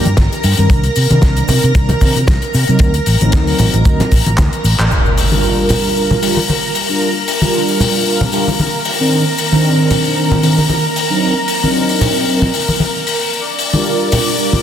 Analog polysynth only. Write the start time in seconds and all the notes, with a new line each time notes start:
0.58 D#3 C4 D4 A#4
1.10 D#3 C4 D4 A#4
1.75 D#3 C4 D4 A#4
2.01 D#3 C4 D4 A#4
2.68 F#3 C4 D#4 A#4
3.20 F#3 C4 D#4 A#4
3.85 F#3 C4 D#4 A#4
5.31 G3 D4 F4 A#4
5.96 G3 D4 F4 A#4
6.22 G3 D4 F4 A#4
6.89 G3 D4 F4 A#4
7.41 G3 D4 F4 A#4
8.06 G3 D4 F4 A#4
8.32 G3 D4 F4 A#4
9.00 D#3 C4 D4 A#4
9.51 D#3 C4 D4 A#4
10.16 D#3 C4 D4 A#4
10.42 D#3 C4 D4 A#4
11.10 F#3 C4 D4 D#4 A#4
11.62 F#3 C4 D4 D#4 A#4
12.27 F#3 C4 D4 D#4 A#4
13.73 G3 D4 F4 A#4
14.38 G3 D4 F4 A#4